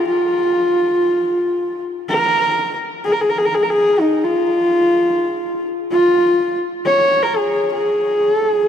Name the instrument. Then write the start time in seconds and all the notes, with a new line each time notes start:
horsehead fiddle
0.08 F4
2.09 A#4
3.04 G#4
3.12 A#4
3.21 G#4
3.29 A#4
3.38 G#4
3.45 A#4
3.54 G#4
3.62 A#4
3.70 G#4
4.00 D#4
4.24 F4
5.91 F4
6.86 C#5
7.22 A#4
7.37 G#4
7.72 G#4
8.33 A4
8.50 G#4